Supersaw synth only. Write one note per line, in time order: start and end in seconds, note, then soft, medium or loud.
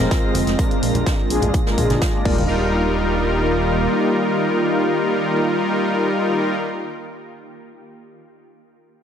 0.00 0.20 G#3 medium
0.00 0.20 C4 medium
0.00 0.20 F4 medium
0.00 0.20 A#4 medium
0.23 0.37 G#3 medium
0.23 0.37 C4 medium
0.23 0.37 F4 medium
0.23 0.37 D#5 loud
0.59 0.81 G#3 medium
0.59 0.81 D4 medium
0.59 0.81 F4 medium
0.59 0.81 A#4 loud
0.95 1.08 G#3 medium
0.95 1.08 D4 medium
0.95 1.08 F4 medium
0.95 1.08 A#4 medium
1.30 1.52 G#3 medium
1.30 1.52 D4 medium
1.30 1.52 F4 medium
1.30 1.52 G#4 loud
1.66 1.76 G#3 medium
1.66 1.76 D4 medium
1.66 1.76 F4 medium
1.66 1.76 A#4 loud
1.78 2.11 G#3 medium
1.78 2.11 D4 medium
1.78 2.11 F4 medium
1.78 2.11 G#4 medium
2.14 2.25 G#3 medium
2.14 2.25 D4 medium
2.14 2.24 F4 medium
2.14 2.25 D5 loud
2.25 6.55 G3 medium
2.25 6.55 D#4 medium
2.25 6.55 F4 medium
2.25 6.55 A#4 medium